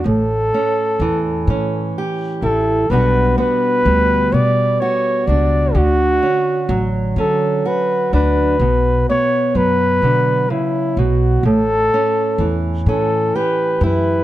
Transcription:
<<
  \new Staff \with { instrumentName = "Flugelhorn" } { \time 6/8 \key a \mixolydian \tempo 4. = 42 a'2 r8 a'8 | b'8 b'4 d''8 cis''8 d''8 | fis'4 r8 a'8 b'8 b'8~ | b'8 cis''8 b'4 e'8 fis'8 |
a'4 r8 a'8 b'8 b'8 | }
  \new Staff \with { instrumentName = "Steel-string acoustic guitar" } { \time 6/8 \key a \mixolydian << { r8 cis'4 cis'8 g'8 e'8 | <g b d' fis'>8 b4 b8 fis'8 d'8 | r8 cis'4 cis'8 fis'8 d'8 | r8 b2~ b8 |
r8 cis'4 cis'8 g'8 e'8 | } \\ { a,4 e2 | b,4 g2 | d4 fis2 | b,4 fis8 d8 cis8 b,8 |
a,4 e2 | } >> }
  \new Staff \with { instrumentName = "Upright bass" } { \clef bass \time 6/8 \key a \mixolydian a,,8 r8 e,8 a,8 r8 a,,8 | b,,8 r8 d,8 b,8 r8 cis,8 | d,8 r8 a,,8 d8 r8 d,8 | b,,8 r8 fis,8 b,8 r8 b,,8 |
a,,8 r8 e,8 a,8 r8 fis,8 | }
>>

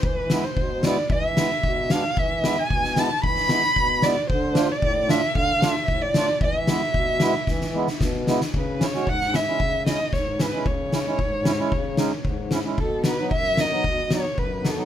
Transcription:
<<
  \new Staff \with { instrumentName = "Violin" } { \time 4/4 \tempo 4 = 113 b'8. c''8. d''8 e''4. f''8 | e''8. gis''8. a''8 b''4. d''8 | c''8. d''8. e''8 f''8 e''8. d''8. | e''2. r4 |
b'8 cis''8 fis''8 e''4 dis''8 cis''8 b'8 | cis''2.~ cis''8 r8 | a'8 b'8 e''8 dis''4 cis''8 b'8 a'8 | }
  \new Staff \with { instrumentName = "Accordion" } { \time 4/4 r8 <gis b e'>16 r8. <gis b e'>16 r8. <gis b e'>16 r8. <gis b d'>16 r16 | r8 <gis b e'>16 r8. <gis b e'>16 r8. <gis b e'>16 r8. <gis b e'>16 r16 | r8 <a d' f'>16 r8. <a d' f'>16 r8. <a d' f'>16 r8. <a d' f'>16 r16 | r8 <gis b e'>16 r8. <gis b e'>16 r8. <gis b e'>16 r8. <gis b e'>16 r16 |
r8 <cis' e'>16 <gis cis' fis'>16 r8 <cis' e'>16 <gis cis' e'>16 r8 <gis cis' e'>16 r8. <cis' e'>16 <gis cis' e'>16 | r8 <cis' e'>16 <gis cis' e'>16 r8 <cis' e'>16 <gis cis' e'>16 r8 <gis cis' dis'>16 r8. <cis' e'>16 <gis cis' e'>16 | r8 <b dis'>16 <fis b dis'>16 r8 <b dis'>16 <fis b dis'>16 r8 <fis b dis'>16 r8. <b dis'>16 <fis b dis'>16 | }
  \new Staff \with { instrumentName = "Accordion" } { \clef bass \time 4/4 e4 b,4 e4 b,4 | e4 b,4 e4 b,4 | d4 a,4 d4 a,4 | e4 b,4 e4 b,4 |
cis4 gis,4 cis4 gis,4 | cis4 gis,4 cis4 gis,4 | b,4 fis,4 b,4 fis,4 | }
  \new DrumStaff \with { instrumentName = "Drums" } \drummode { \time 4/4 bd8 sn8 bd8 sn8 bd8 sn8 bd8 sn8 | bd8 sn8 bd16 sn16 sn8 bd16 sn16 sn8 bd8 sn8 | bd8 sn8 bd8 sn8 bd8 sn8 bd8 sn8 | bd8 sn8 bd8 sn8 <bd sn>16 sn8 sn16 <bd sn>8 sn16 sn16 |
bd8 sn16 sn16 bd16 sn16 sn8 bd8 sn8 <bd sn>8 sn8 | bd8 sn8 bd8 sn8 bd8 sn8 bd8 sn8 | bd8 sn8 bd8 sn8 bd8 sn8 bd8 sn8 | }
>>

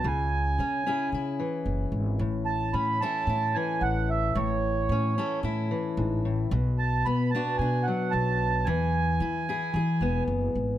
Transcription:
<<
  \new Staff \with { instrumentName = "Accordion" } { \time 4/4 \key a \major \tempo 4 = 112 gis''2 r2 | r8 a''8 b''8 a''4 gis''8 fis''8 e''8 | cis''2 r2 | r8 a''8 b''8 a''8 gis''8 fis''8 a''4 |
gis''2. r4 | }
  \new Staff \with { instrumentName = "Steel-string acoustic guitar" } { \time 4/4 \key a \major << { r4 cis'8 <cis' e' gis'>8 e'2 | r4 cis'8 <cis' e' a'>8 e'2 | r4 cis'8 <cis' e' a'>8 e'2 | r4 b8 <b d' fis'>8 d'2 |
r4 e'8 <e' gis'>8 gis'2 | } \\ { cis2~ cis8 e4. | a,2~ a,8 e4. | a,2~ a,8 e8 gis,8 a,8 | b,2~ b,8 fis4. |
e2~ e8 b4. | } >> }
  \new Staff \with { instrumentName = "Upright bass" } { \clef bass \time 4/4 \key a \major cis,4 cis8 r8 cis8 r8 fis,,8 gis,,8 | a,,4 a,8 r8 a,8 r8 a,,4 | a,,4 a,8 r8 a,8 r8 a,,4 | b,,4 b,8 r8 b,8 r8 b,,4 |
e,4 e8 r8 e8 e,,8 fis,,8 gis,,8 | }
>>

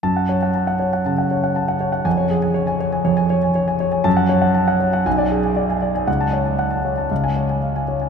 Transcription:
<<
  \new Staff \with { instrumentName = "Grand piano" } { \time 4/4 \key fis \minor \tempo 4 = 119 << { a''8 r2. r8 | gis''8 r2. r8 | a''8 r4. gis''8 r4. | r16 a''8 r4. gis''8 r4 r16 | } \\ { r16 fis''16 cis''16 fis''16 a''16 fis''16 cis''16 fis''16 a''16 fis''16 cis''16 fis''16 a''16 fis''16 cis''16 fis''16 | r16 cis''16 gis'16 gis''16 cis''16 gis''16 cis''16 gis''16 cis''16 gis''16 cis''16 gis''16 cis''16 gis''16 cis''16 gis''16 | r16 fis''16 cis''16 fis''16 a''16 fis''16 cis''16 fis''16 r16 d''16 gis'16 gis''16 d''16 gis''16 d''16 gis''16 | fis''8 cis''16 a''16 fis''16 a''16 cis''16 a''16 eis''8 cis''16 gis''16 eis''16 gis''16 cis''16 gis''16 | } >> }
  \new Staff \with { instrumentName = "Grand piano" } { \clef bass \time 4/4 \key fis \minor fis,2 cis8 r4. | eis,2 eis,2 | fis,2 b,,2 | cis,2 cis,2 | }
>>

